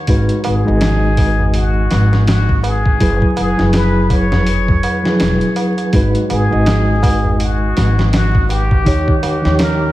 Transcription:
0.07 upright bass G#1, reed electric piano G#3 D#4 F#4 B4, kick, open hi-hat, tabla na
0.29 closed hi-hat
0.44 upright bass G#1, muted trumpet G#4, open hi-hat, tabla na
0.65 upright bass G#1, reed electric piano G#3 D#4 F#4 D#5, tabla na
0.81 snare, open hi-hat, tabla na
1.17 kick, open hi-hat, tabla na
1.39 tabla na, tabla ge
1.54 muted trumpet F#4, open hi-hat, tabla na
1.91 upright bass G#1, snare, open hi-hat, tabla na
2.12 snare, tabla na
2.27 muted trumpet F#4, snare, open hi-hat, tabla na
2.49 kick
2.63 muted trumpet G#4, open hi-hat, tabla na
2.86 kick, tabla na
3.00 upright bass F#1, reed electric piano F#3 E4 G#4 B4, kick, open hi-hat, tabla na
3.22 kick
3.37 upright bass F#1, muted trumpet G#4, open hi-hat, tabla na
3.57 upright bass F#1, reed electric piano F#3 E4 G#4, snare, tabla na
3.62 reed electric piano B4
3.73 muted trumpet B4, snare, open hi-hat, tabla na
4.10 muted trumpet C#5, kick, open hi-hat, tabla na
4.32 snare, tabla na, tabla ge
4.46 open hi-hat, tabla na
4.68 kick, tabla ge
4.83 open hi-hat, tabla na
5.03 reed electric piano F#3 E4, snare, tabla na
5.07 reed electric piano G#4 B4
5.20 upright bass E1, snare, open hi-hat, tabla na
5.41 closed hi-hat
5.56 open hi-hat, tabla na
5.77 closed hi-hat, tabla na
5.93 upright bass G#1, reed electric piano G#3 D#4 F#4 B4, kick, open hi-hat, tabla na
6.15 closed hi-hat
6.30 upright bass G#1, muted trumpet G#4, open hi-hat, tabla na
6.50 upright bass G#1, reed electric piano G#3 D#4 F#4 D#5, tabla na
6.66 snare, open hi-hat, tabla na
7.03 kick, open hi-hat, tabla na
7.24 tabla na, tabla ge
7.40 muted trumpet F#4, open hi-hat, tabla na
7.77 upright bass G#1, snare, open hi-hat, tabla na
7.98 snare, tabla na
8.12 muted trumpet F#4, snare, open hi-hat, tabla na
8.35 kick
8.49 muted trumpet G4, open hi-hat, tabla na
8.71 kick, tabla na
8.85 upright bass D#2, reed electric piano D#3 D#4 G4 C#5, kick, open hi-hat, tabla na
9.08 kick
9.23 upright bass D#2, muted trumpet G4, open hi-hat, tabla na
9.41 upright bass D#2, reed electric piano D#3 D#4 G4, snare, tabla na
9.47 reed electric piano C#5
9.59 muted trumpet A#4, snare, open hi-hat, tabla na

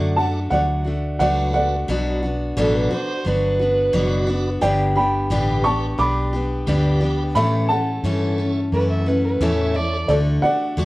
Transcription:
Already playing: fingered electric bass F#2, steel-string acoustic guitar D3 F#3 A3 D4 F#4, tonewheel organ F#4 A4 D5, upright piano D5 F#5
0.16 steel-string acoustic guitar A3 D4 F#4, upright piano F#5 A5
0.50 fingered electric bass D2, steel-string acoustic guitar F#3 A3 D4 F#4, upright piano D5 F#5
0.84 steel-string acoustic guitar A3 D4 F#4
1.19 fingered electric bass C#2, steel-string acoustic guitar F#3 A3 D4 F#4, tonewheel organ F#4 A4 B4, upright piano D5 F#5
1.53 steel-string acoustic guitar A3 D4 F#4, upright piano D5 F#5
1.88 fingered electric bass B1, steel-string acoustic guitar B2 F#3 B3 D4 F#4
2.23 steel-string acoustic guitar B3 D4 F#4
2.57 fingered electric bass A1, steel-string acoustic guitar B2 F#3 B3 D4 F#4, tonewheel organ F#4 B4 D5, fiddle A4
2.74 fiddle B4
2.90 steel-string acoustic guitar D4 F#4, fiddle C5
3.25 fingered electric bass G1, steel-string acoustic guitar F#3 B3 D4 F#4, fiddle B4
3.59 steel-string acoustic guitar B3 D4 F#4
3.93 fingered electric bass F#1, steel-string acoustic guitar B2 F#3 B3 D4 F#4, tonewheel organ F#4 B4 D5
4.27 steel-string acoustic guitar B3 D4 F#4
4.61 fingered electric bass G1, steel-string acoustic guitar G2 D3 G3 B3 D4 G4, upright piano D5 G5
4.95 steel-string acoustic guitar G3 B3 D4 G4, upright piano G5 B5
5.30 fingered electric bass A1, steel-string acoustic guitar G2 D3 G3 B3 D4 G4, tonewheel organ G4 B4 D5
5.64 steel-string acoustic guitar G3 B3 D4 G4, upright piano A5 C#6
5.98 fingered electric bass B1, steel-string acoustic guitar G3 B3 D4 G4, upright piano B5 D6
6.33 steel-string acoustic guitar G3 B3 D4 G4
6.67 fingered electric bass D2, steel-string acoustic guitar G2 D3 G3 B3 D4 G4, tonewheel organ G4 B4 D5
7.00 steel-string acoustic guitar G3 B3 D4 G4
7.35 steel-string acoustic guitar A2 E3 A3 C#4 A4, fingered electric bass A2, upright piano E5 B5
7.69 steel-string acoustic guitar C#4 A4, upright piano F#5 A5
7.73 steel-string acoustic guitar A3
8.04 fingered electric bass G2, steel-string acoustic guitar A2 E3 A3 C#4 A4, tonewheel organ E4 A4 C#5
8.38 steel-string acoustic guitar A3 C#4 A4
8.72 fingered electric bass F#2, steel-string acoustic guitar E3 A3 C#4 A4, fiddle B4
8.90 fiddle E5
9.06 steel-string acoustic guitar A3 C#4 A4, fiddle B4
9.24 fiddle B4
9.40 fingered electric bass E2, steel-string acoustic guitar A2 E3 A3 C#4 A4, tonewheel organ E4 A4 C#5, fiddle E5
9.74 steel-string acoustic guitar A3 A4, fiddle D5
10.08 fingered electric bass D2, steel-string acoustic guitar D3 A3 D4 F#4, upright piano A4 D5
10.42 steel-string acoustic guitar D4 F#4, upright piano D5 F#5, muted fingered electric bass stroke
10.46 steel-string acoustic guitar A3
10.77 fingered electric bass E2, steel-string acoustic guitar D3 A3 D4 F#4, tonewheel organ F#4 A4 D5

